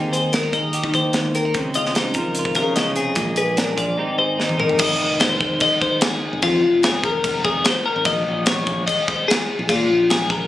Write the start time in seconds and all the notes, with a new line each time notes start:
Already playing: D#2 D#3 C4 D#4 G4 G#4
0.13 G#4 C5, closed hi-hat
0.33 C4 A#4, snare, closed hi-hat
0.43 D#4
0.53 D#2 D#3 D#5, kick, closed hi-hat
0.73 G4, closed hi-hat
0.84 D#3, kick
0.94 D#2 C5, kick, closed hi-hat
1.13 D#2, snare, closed hi-hat
1.35 C4 A#4, closed hi-hat
1.45 D#4
1.54 C#2 C#3 C4, kick, closed hi-hat
1.74 C#2 F4 D#5, closed hi-hat
1.85 snare
1.95 D#4 C5, snare, closed hi-hat
2.14 C#2 F3 A#4, kick, closed hi-hat
2.35 closed hi-hat
2.39 F4
2.45 G#1, kick
2.55 C#3 A#4, kick, closed hi-hat
2.76 C#3 D#5, snare, closed hi-hat
2.96 C3 G#4, closed hi-hat
3.15 A#1 A#2 G#3, kick, closed hi-hat
3.36 G#4 B4, closed hi-hat
3.57 D4 A#4, snare, closed hi-hat
3.77 A#1 F3 D5, kick, closed hi-hat
3.98 G#2 D#3 C4 D#4 G4
4.19 G#4 C5
4.38 D#4, snare
4.49 high tom
4.58 D#3 A#4, mid tom
4.69 floor tom
4.79 F1 D#5, kick, crash
5.01 F1
5.20 C5, snare, crash
5.41 F1, kick
5.60 D#5, kick, crash
5.82 C5, kick
6.01 G#4, snare, crash
6.33 F1
6.42 F2 F4, kick, crash
6.63 F1
6.83 G#4, snare, crash
7.04 A#4, kick
7.24 kick, crash
7.45 F1 G#4, kick
7.64 C5, snare, crash
7.86 A#4
7.96 G#1
8.05 A#1 D#5, kick, crash
8.28 A#1
8.46 C#5, snare, crash
8.67 A#1, kick
8.87 D#5, kick, crash
9.08 C5, kick
9.28 G#4, snare, crash
9.59 A#1
9.69 A#2 F4, kick, crash
9.88 A#1
10.10 G#4, snare, crash
10.30 A#4, kick